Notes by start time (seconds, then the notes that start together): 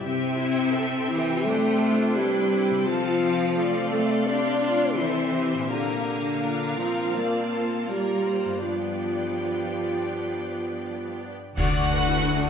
Already playing: C3 C4 E5
0.00 E4 G4
0.05 C3 C4 G4 E5 G5
0.40 E4
0.75 A4
1.09 E3 E4 G4
1.44 A3 D4 G4 A4 C5
1.83 F4
2.16 G3 E4 G4 B4 G5
2.51 E4
2.70 C3
2.80 C4
2.84 F3 F4 C5 F5
2.88 C4 F4 A4 A5
3.23 A5
3.57 A3 A4 D5 F5 C6
3.92 A3 A4
4.27 D4 G4 D5 F5
4.65 F4
4.99 E3 C4 E4 A4 C5 E5
5.37 G4
5.55 A#2
5.59 A#3
5.64 D4
5.68 D3 A#3 D4 F4 A#4 F5 A#5
5.73 A#3
6.08 A#3
6.42 D4 F4 A#4 A#5
6.78 F3 C4 F4
7.16 A#3 A#4 D5 A5
7.54 A4
7.89 G3 A#3 G4 A#4 D5 A#5
8.26 C5
8.45 G2
8.50 B3
8.55 D4
8.59 F3 G3 D4 F4 G4 D5 G5
8.63 B3
11.57 D2 D3 F#4 D5 F#5, concert bass drum, crash
11.82 D4
11.95 B4
12.07 E4
12.30 D4 A4